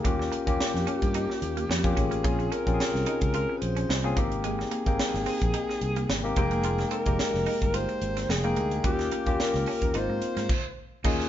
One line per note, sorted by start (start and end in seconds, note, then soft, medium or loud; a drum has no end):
0.04 0.28 D#2 loud
0.04 0.17 G3 medium
0.04 0.37 A#3 medium
0.04 0.37 C#4 medium
0.04 0.37 F4 medium
0.04 0.38 G4 medium
0.04 1.99 G4 medium
0.04 kick loud
0.04 closed hi-hat medium
0.19 muted clean electric guitar stroke soft
0.19 snare soft
0.32 0.44 A#3 medium
0.32 closed hi-hat medium
0.46 0.58 D#2 medium
0.46 1.32 A#3 medium
0.46 1.32 C#4 medium
0.46 1.32 F4 medium
0.46 1.33 G4 medium
0.46 kick medium
0.46 closed hi-hat soft
0.60 snare loud
0.74 0.85 F2 medium
0.74 snare soft
0.87 1.00 C#4 medium
0.87 closed hi-hat medium
1.02 1.25 G2 medium
1.02 kick medium
1.02 closed hi-hat soft
1.14 1.27 D#4 medium
1.14 closed hi-hat medium
1.30 muted clean electric guitar stroke soft
1.30 snare soft
1.42 1.65 D#2 medium
1.42 closed hi-hat medium
1.57 1.68 A#3 medium
1.57 closed hi-hat medium
1.69 1.92 F2 medium
1.69 muted clean electric guitar stroke soft
1.69 snare loud
1.84 2.16 A#3 medium
1.84 2.16 C#4 medium
1.84 2.16 F4 medium
1.84 2.16 G4 medium
1.84 kick medium
1.97 2.24 A1 medium
1.97 2.09 C#4 medium
1.97 2.54 G#4 medium
1.97 kick medium
1.97 closed hi-hat medium
2.11 2.22 A#3 medium
2.11 closed hi-hat soft
2.24 2.47 A#1 loud
2.24 2.37 A#3 medium
2.24 2.57 C4 medium
2.24 2.57 C#4 medium
2.24 2.57 F4 medium
2.24 2.57 G#4 medium
2.24 kick loud
2.24 closed hi-hat medium
2.39 muted clean electric guitar stroke soft
2.39 closed hi-hat soft
2.52 2.64 C#4 medium
2.52 3.34 A#4 medium
2.52 closed hi-hat medium
2.67 2.77 A#1 medium
2.67 3.52 C4 medium
2.67 3.52 C#4 medium
2.67 3.52 F4 medium
2.67 2.73 G4 medium
2.67 kick medium
2.67 closed hi-hat soft
2.74 3.56 G#4 medium
2.80 snare loud
2.94 3.05 C2 medium
2.94 snare soft
3.06 3.19 D#4 medium
3.06 closed hi-hat medium
3.21 3.45 C#2 medium
3.21 kick medium
3.21 closed hi-hat soft
3.34 3.47 F4 medium
3.34 3.59 A#4 medium
3.34 closed hi-hat medium
3.49 muted clean electric guitar stroke soft
3.57 3.64 B4 medium
3.62 3.85 A#1 medium
3.62 4.17 C5 medium
3.62 closed hi-hat medium
3.76 3.87 C#4 medium
3.76 closed hi-hat medium
3.89 4.12 C2 medium
3.89 muted clean electric guitar stroke soft
3.89 snare loud
4.04 4.15 A#3 medium
4.04 4.16 C4 medium
4.04 4.17 C#4 medium
4.04 4.17 F4 medium
4.04 4.17 G#4 medium
4.17 4.63 G#1 medium
4.17 4.29 A#3 medium
4.17 4.72 A#3 medium
4.17 4.72 C4 medium
4.17 4.72 D#4 medium
4.17 4.72 G4 medium
4.17 kick medium
4.17 closed hi-hat medium
4.32 closed hi-hat soft
4.44 4.57 G#3 medium
4.44 6.33 G#4 medium
4.44 closed hi-hat medium
4.59 muted clean electric guitar stroke soft
4.59 snare soft
4.71 4.84 A#3 medium
4.71 closed hi-hat medium
4.86 4.97 G#1 medium
4.86 5.72 A#3 medium
4.86 5.72 C4 medium
4.86 5.72 D#4 medium
4.86 5.73 G5 medium
4.86 kick medium
4.86 closed hi-hat soft
4.99 snare loud
5.14 5.25 G#1 medium
5.14 snare soft
5.26 5.39 C4 medium
5.26 open hi-hat medium
5.41 5.52 A#1 medium
5.41 kick medium
5.41 closed hi-hat soft
5.54 5.67 D#4 medium
5.54 closed hi-hat medium
5.69 muted clean electric guitar stroke soft
5.69 snare soft
5.81 6.04 C2 medium
5.81 closed hi-hat medium
5.96 6.07 A#3 medium
5.96 closed hi-hat medium
6.09 6.32 G#1 medium
6.09 muted clean electric guitar stroke soft
6.09 snare loud
6.24 6.36 A#3 medium
6.24 6.37 C4 medium
6.24 6.36 D#4 medium
6.24 6.37 G4 medium
6.36 6.83 F1 medium
6.36 6.92 G#3 medium
6.36 6.92 A#3 medium
6.36 6.50 C4 medium
6.36 6.92 D#4 medium
6.36 6.89 G#4 medium
6.36 6.92 G5 medium
6.36 kick medium
6.36 closed hi-hat medium
6.51 6.62 A#3 medium
6.51 closed hi-hat soft
6.64 6.77 F4 medium
6.64 closed hi-hat medium
6.78 muted clean electric guitar stroke soft
6.78 snare soft
6.78 closed hi-hat soft
6.91 7.04 C4 medium
6.91 7.77 A#4 loud
6.91 closed hi-hat medium
7.06 7.17 F1 loud
7.06 7.92 G#3 medium
7.06 7.92 A#3 medium
7.06 7.92 D#4 medium
7.06 7.92 G4 medium
7.06 kick medium
7.06 closed hi-hat soft
7.19 snare medium
7.34 7.45 F1 medium
7.34 snare soft
7.46 7.59 D#4 medium
7.46 open hi-hat medium
7.62 7.85 G1 medium
7.62 kick medium
7.62 closed hi-hat soft
7.74 7.87 F4 medium
7.74 8.32 C5 loud
7.74 closed hi-hat medium
7.89 muted clean electric guitar stroke soft
7.89 closed hi-hat soft
8.02 8.25 G#1 medium
8.02 closed hi-hat medium
8.17 8.27 C4 medium
8.17 snare soft
8.17 closed hi-hat medium
8.29 8.52 F1 loud
8.29 8.85 G#4 medium
8.29 muted clean electric guitar stroke soft
8.29 snare loud
8.44 8.76 G#3 medium
8.44 8.76 A#3 medium
8.44 8.55 A#3 medium
8.44 8.76 D#4 medium
8.44 8.76 G5 medium
8.44 closed hi-hat soft
8.56 8.80 D2 medium
8.56 8.70 A#3 medium
8.56 closed hi-hat medium
8.71 closed hi-hat medium
8.84 9.07 D#2 loud
8.84 8.97 G3 medium
8.84 9.17 A#3 medium
8.84 9.17 C#4 medium
8.84 9.17 F4 medium
8.84 9.17 G4 medium
8.84 9.43 G4 medium
8.84 kick loud
8.84 closed hi-hat medium
8.99 muted clean electric guitar stroke soft
8.99 snare soft
8.99 closed hi-hat soft
9.12 9.25 A#3 medium
9.12 closed hi-hat medium
9.26 9.37 D#2 loud
9.26 9.93 A#3 medium
9.26 9.94 C#4 medium
9.26 9.94 F4 medium
9.26 9.95 G4 medium
9.26 kick medium
9.26 closed hi-hat soft
9.40 9.98 A#4 medium
9.40 snare medium
9.54 9.65 C#2 medium
9.54 snare soft
9.54 closed hi-hat soft
9.66 9.80 C#4 medium
9.66 open hi-hat medium
9.81 9.92 D#2 medium
9.81 kick medium
9.81 closed hi-hat soft
9.94 10.07 G#1 medium
9.94 10.39 A#3 medium
9.94 10.39 C4 medium
9.94 10.39 D#4 medium
9.94 10.07 D#4 medium
9.94 10.40 F4 medium
9.94 10.78 C5 medium
9.94 closed hi-hat medium
10.09 10.20 G#2 medium
10.09 muted clean electric guitar stroke soft
10.22 closed hi-hat medium
10.37 10.47 G#2 medium
10.37 10.48 A#3 medium
10.37 snare soft
10.37 closed hi-hat medium
10.49 kick loud
10.49 crash medium
11.04 11.27 D#2 loud
11.04 11.29 A#3 medium
11.04 11.29 C#4 medium
11.04 11.17 D#4 medium
11.04 11.29 F4 medium
11.04 11.29 G#4 medium
11.04 kick loud
11.04 crash medium
11.20 muted clean electric guitar stroke soft
11.20 snare soft